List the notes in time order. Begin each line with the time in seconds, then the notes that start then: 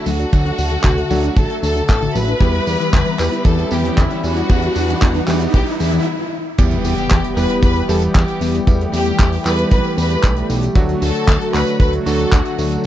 Already playing: F#3 A3 D4 F#4 A4 D5 A5, riser
0.06 D2 F#3 F#4 F#5, open hi-hat, tambourine
0.19 D4, closed hi-hat, tambourine
0.32 D2 D3 F#3 A3 D4 F#4 E5, kick, closed hi-hat, tambourine
0.45 D4, closed hi-hat, tambourine
0.58 D2 D3, open hi-hat, tambourine
0.71 D3, closed hi-hat, tambourine
0.84 D2 C3, kick, clap, closed hi-hat, tambourine
0.97 D3, closed hi-hat, tambourine
1.10 D2 F#3 A3 D4 F#4, open hi-hat, tambourine
1.24 D4, closed hi-hat, tambourine
1.37 A1 D3 A4 A5, kick, closed hi-hat, tambourine
1.50 D4, closed hi-hat, tambourine
1.63 D2 D3 A4 A5, open hi-hat, tambourine
1.76 D3, closed hi-hat, tambourine
1.88 A1 C3 A4 A5, kick, clap, closed hi-hat, tambourine
2.01 D3, closed hi-hat, tambourine
2.15 A1 F#3 B4 B5, open hi-hat, tambourine
2.28 D4, closed hi-hat, tambourine
2.41 E2 E3 G3 B3 E4 G4 B4 B5, kick, closed hi-hat, tambourine
2.54 E4, closed hi-hat, tambourine
2.67 E2 E3, open hi-hat, tambourine
2.80 E3, closed hi-hat, tambourine
2.93 E2 D3, kick, clap, closed hi-hat, tambourine
3.06 E3, closed hi-hat, tambourine
3.19 E2 G3 B3 E4 G4, clap, open hi-hat, tambourine
3.32 E4, closed hi-hat, tambourine
3.45 E2 E3 A4 A5, kick, closed hi-hat, tambourine
3.58 E4, closed hi-hat, tambourine
3.71 E2 E3 G3 B3 E4 G4 G5, open hi-hat, tambourine
3.84 E3, closed hi-hat, tambourine
3.97 E2 D3 E4 E5, kick, clap, closed hi-hat, tambourine
4.10 E3, closed hi-hat, tambourine
4.23 E2 G3 F#4 F#5, open hi-hat, tambourine
4.36 E4, closed hi-hat, tambourine
4.49 E2 E3 G3 B3 E4 B4 F#5, kick, closed hi-hat, tambourine
4.62 E4, closed hi-hat, tambourine
4.75 E2 E3, open hi-hat, tambourine
4.89 E3, closed hi-hat, tambourine
5.01 E2 D3, kick, clap, closed hi-hat, tambourine
5.15 E3, closed hi-hat, tambourine
5.28 E2 G3 B3 E4 G4, clap, open hi-hat, tambourine
5.41 E4, closed hi-hat, tambourine
5.54 B1 E3 G4 G5, kick, closed hi-hat, tambourine
5.66 E4, closed hi-hat, tambourine
5.80 E2 E3 E4 E5, open hi-hat, tambourine
5.92 E3, closed hi-hat, tambourine
6.58 E2 E3 G3 B3 E4 G4, kick, closed hi-hat, crash, tambourine, impact
6.71 closed hi-hat, tambourine
6.84 E2 G4 G5, open hi-hat, tambourine
6.98 closed hi-hat, tambourine
7.10 E2, kick, clap, closed hi-hat, tambourine
7.24 closed hi-hat, tambourine
7.37 E2 G3 B3 E4 G4 B4 B5, open hi-hat, tambourine
7.49 closed hi-hat, tambourine
7.62 E2 B4 B5, kick, closed hi-hat, tambourine
7.76 closed hi-hat, tambourine
7.89 E2 G3 B3 E4 G4 A4 A5, open hi-hat, tambourine
8.01 closed hi-hat, tambourine
8.15 E2 G4 G5, kick, clap, closed hi-hat, tambourine
8.28 closed hi-hat, tambourine
8.41 E2, open hi-hat, tambourine
8.54 closed hi-hat, tambourine
8.67 E2 G3 A3 B3 E4 G4, kick, closed hi-hat, tambourine
8.79 closed hi-hat, tambourine
8.93 E2 G4 G5, open hi-hat, tambourine
9.06 closed hi-hat, tambourine
9.19 E2, kick, clap, closed hi-hat, tambourine
9.33 open hi-hat, tambourine
9.45 E2 G3 B3 E4 G4 B4 B5, clap, open hi-hat, tambourine
9.58 closed hi-hat, tambourine
9.71 B1 B4 B5, kick, closed hi-hat, tambourine
9.84 closed hi-hat, tambourine
9.97 E2 B4 B5, open hi-hat, tambourine
10.10 closed hi-hat, tambourine
10.23 B1, kick, clap, closed hi-hat, tambourine
10.37 closed hi-hat, tambourine
10.50 B1, open hi-hat, tambourine
10.62 closed hi-hat, tambourine
10.75 D2 D3 F#3 A3 D4 F#4, kick, closed hi-hat, tambourine
10.89 closed hi-hat, tambourine
11.02 D2 A4 A5, open hi-hat, tambourine
11.15 closed hi-hat, tambourine
11.28 D2, kick, clap, closed hi-hat, tambourine
11.41 closed hi-hat, tambourine
11.54 D2 F#3 A3 D4 F#4 B4 B5, clap, open hi-hat, tambourine
11.67 closed hi-hat, tambourine
11.80 D2 B4 B5, kick, closed hi-hat, tambourine
11.93 closed hi-hat, tambourine
12.06 D2 F#3 A3 D4 F#4 A4 A5, open hi-hat, tambourine
12.19 closed hi-hat, tambourine
12.32 D2 F#4 F#5, kick, clap, closed hi-hat, tambourine
12.45 closed hi-hat, tambourine
12.58 D2, open hi-hat, tambourine
12.72 closed hi-hat, tambourine